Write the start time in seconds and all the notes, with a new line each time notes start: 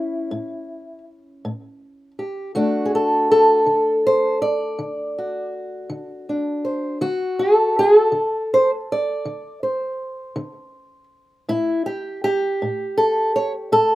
Already playing: C#4 E4
0.31 A2
1.45 A2
2.19 G4
2.55 D3 A3 D4 F#4
2.85 G#4
2.95 A4
3.31 A4
3.66 D3
4.07 C5
4.42 D5
4.79 D3
5.18 F#4
5.90 D3
6.29 D4
6.65 C5
7.01 D3 F#4
7.39 A4
7.79 G#4
7.99 A4
8.12 D3
8.54 C5
8.92 D5
9.25 D3
9.63 C5
10.36 D3
11.49 A2 E4
11.86 G4
12.24 G4
12.62 A2
12.98 A4
13.36 C#5
13.72 A2 A4